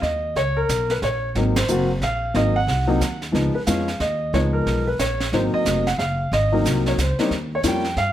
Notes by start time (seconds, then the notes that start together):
0.02 D#2 D#5, kick, snare
0.36 C#2 C#5, brush sweep, kick, snare
0.57 A#4
0.69 B1, kick, snare, hi-hat pedal
0.90 B4, snare
1.02 A#1 C#5, kick, snare
1.35 G#1 F#3 A#3 C4 D#4, brush sweep, kick, snare
1.56 C5, snare, ride
1.68 F#1 F#3 A#3 C4 F#4, hi-hat pedal
2.01 A#1 F5, kick, snare
2.34 G#1 F#3 A#3 C4 D#4 D#5, brush sweep, kick, snare
2.56 F#5
2.67 C2, kick, snare
2.87 F#3 A#3 C4 D#4
3.00 D#2, kick, snare, hi-hat pedal
3.22 snare
3.32 C#2 F3 G#3 B3 D#4, brush sweep, kick, snare
3.55 B4
3.67 F2 F3 G#3 B3 C#4 F5, kick, snare, hi-hat pedal
3.88 snare
4.00 D#2 D#5, kick, snare
4.33 C#2 F3 G#3 B3 D#4 C#5, brush sweep, kick, snare
4.53 A#4
4.66 B1, kick, snare
4.87 B4
4.99 A#1 C#5, kick, snare, hi-hat pedal
5.20 snare
5.32 G#1 F#3 A#3 C4 D#4 C5, brush sweep, kick, snare
5.53 D#5, muted upright bass stroke
5.65 F1, kick, snare, hi-hat pedal
5.87 F#5, snare
5.98 F#1 F5, kick, snare
6.32 G#1 D#5, brush sweep, kick, snare
6.52 F#3 A#3 C4 D#4
6.65 C2, kick, snare, hi-hat pedal
6.86 C#5, snare
6.98 C#2 C5, kick, snare, hi-hat pedal
7.19 G3 A#3 C#4 D#4, snare
7.31 D#2, brush sweep, kick, snare
7.55 C#5
7.63 F2 G3 A#3 C#4 F4, kick, snare, hi-hat pedal
7.68 G5
7.84 snare
7.97 G2 F5, kick, snare